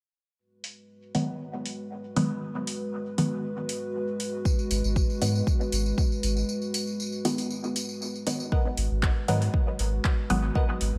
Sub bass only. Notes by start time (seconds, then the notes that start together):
4.71 G#1
4.84 G#1
5.22 G#2
5.72 G#1
6.23 G#1
8.77 G#1
8.91 G#1
9.28 G#2
9.79 G#1
10.30 G#1
10.81 G#1
10.94 G#1